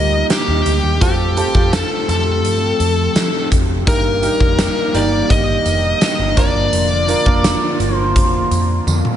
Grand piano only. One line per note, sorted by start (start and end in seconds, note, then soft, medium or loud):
0.00 1.03 G3 medium
0.00 1.04 A#3 medium
0.00 1.04 D#4 medium
0.00 1.01 F4 medium
0.00 1.02 G4 medium
0.00 1.03 A#4 medium
1.01 1.30 C4 medium
1.01 1.31 F4 medium
1.01 1.31 G4 medium
1.01 1.31 A4 medium
1.37 1.51 C4 medium
1.37 1.52 F4 medium
1.37 1.52 G4 medium
1.37 1.52 A4 medium
1.54 2.71 C4 medium
1.54 2.72 F4 medium
1.54 2.72 G4 medium
1.54 2.72 A4 medium
3.86 4.90 G2 medium
3.86 4.16 A#3 medium
3.86 4.16 D#4 medium
3.86 4.16 G4 medium
3.86 4.17 A#4 medium
4.22 4.81 A#3 medium
4.22 4.81 D#4 medium
4.22 4.81 G4 medium
4.22 4.82 A#4 medium
4.94 6.11 A#3 medium
4.94 6.11 D#4 medium
4.94 6.11 G4 medium
4.94 6.11 A#4 medium
6.37 6.95 A#3 medium
6.37 6.96 D4 medium
6.37 6.96 F4 medium
6.37 6.96 A#4 medium
7.08 7.23 A#3 medium
7.08 7.23 D4 medium
7.08 7.23 F4 medium
7.08 7.24 A#4 medium
7.26 8.43 A#3 medium
7.26 8.43 D4 medium
7.26 8.43 F4 medium
7.26 8.43 A#4 loud